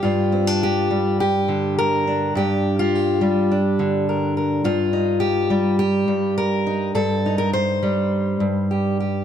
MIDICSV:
0, 0, Header, 1, 2, 480
1, 0, Start_track
1, 0, Key_signature, -2, "minor"
1, 0, Tempo, 578592
1, 29, Time_signature, 4, 2, 24, 8
1, 7669, End_track
2, 0, Start_track
2, 0, Title_t, "Steel-string acoustic guitar"
2, 0, Program_c, 0, 25
2, 0, Note_on_c, 0, 55, 54
2, 0, Note_on_c, 0, 67, 56
2, 22, Note_on_c, 0, 65, 73
2, 34, Note_on_c, 0, 43, 64
2, 268, Note_on_c, 0, 60, 42
2, 392, Note_off_c, 0, 60, 0
2, 392, Note_on_c, 0, 62, 39
2, 514, Note_off_c, 0, 67, 0
2, 524, Note_on_c, 0, 67, 81
2, 742, Note_off_c, 0, 55, 0
2, 752, Note_on_c, 0, 55, 53
2, 988, Note_off_c, 0, 67, 0
2, 994, Note_off_c, 0, 65, 0
2, 998, Note_on_c, 0, 67, 89
2, 1231, Note_on_c, 0, 50, 55
2, 1477, Note_off_c, 0, 67, 0
2, 1481, Note_on_c, 0, 70, 102
2, 1711, Note_off_c, 0, 62, 0
2, 1721, Note_on_c, 0, 62, 42
2, 1949, Note_off_c, 0, 43, 0
2, 1950, Note_off_c, 0, 50, 0
2, 1953, Note_on_c, 0, 43, 74
2, 1955, Note_off_c, 0, 70, 0
2, 1964, Note_on_c, 0, 67, 83
2, 2316, Note_on_c, 0, 65, 89
2, 2433, Note_off_c, 0, 67, 0
2, 2449, Note_on_c, 0, 67, 77
2, 2661, Note_off_c, 0, 55, 0
2, 2665, Note_on_c, 0, 55, 63
2, 2906, Note_off_c, 0, 65, 0
2, 2913, Note_off_c, 0, 62, 0
2, 2916, Note_on_c, 0, 62, 50
2, 3146, Note_on_c, 0, 50, 55
2, 3389, Note_off_c, 0, 67, 0
2, 3393, Note_on_c, 0, 70, 44
2, 3615, Note_off_c, 0, 70, 0
2, 3625, Note_on_c, 0, 70, 43
2, 3830, Note_off_c, 0, 70, 0
2, 3849, Note_off_c, 0, 43, 0
2, 3852, Note_on_c, 0, 43, 68
2, 3856, Note_off_c, 0, 50, 0
2, 3857, Note_on_c, 0, 65, 81
2, 4087, Note_off_c, 0, 62, 0
2, 4090, Note_on_c, 0, 63, 41
2, 4313, Note_on_c, 0, 67, 78
2, 4560, Note_off_c, 0, 55, 0
2, 4564, Note_on_c, 0, 55, 63
2, 4793, Note_off_c, 0, 67, 0
2, 4803, Note_on_c, 0, 67, 83
2, 4812, Note_off_c, 0, 65, 0
2, 5033, Note_off_c, 0, 43, 0
2, 5042, Note_on_c, 0, 43, 64
2, 5286, Note_off_c, 0, 67, 0
2, 5289, Note_on_c, 0, 70, 92
2, 5521, Note_off_c, 0, 63, 0
2, 5531, Note_on_c, 0, 63, 44
2, 5744, Note_off_c, 0, 63, 0
2, 5754, Note_off_c, 0, 43, 0
2, 5763, Note_off_c, 0, 70, 0
2, 5763, Note_on_c, 0, 43, 64
2, 5766, Note_on_c, 0, 69, 90
2, 6022, Note_on_c, 0, 63, 43
2, 6120, Note_off_c, 0, 69, 0
2, 6124, Note_on_c, 0, 70, 91
2, 6247, Note_off_c, 0, 70, 0
2, 6250, Note_on_c, 0, 72, 83
2, 6489, Note_off_c, 0, 55, 0
2, 6492, Note_on_c, 0, 55, 52
2, 6961, Note_off_c, 0, 43, 0
2, 6971, Note_on_c, 0, 43, 54
2, 7216, Note_off_c, 0, 72, 0
2, 7224, Note_on_c, 0, 67, 44
2, 7466, Note_off_c, 0, 67, 0
2, 7469, Note_on_c, 0, 67, 39
2, 7669, Note_off_c, 0, 43, 0
2, 7669, Note_off_c, 0, 55, 0
2, 7669, Note_off_c, 0, 63, 0
2, 7669, Note_off_c, 0, 67, 0
2, 7669, End_track
0, 0, End_of_file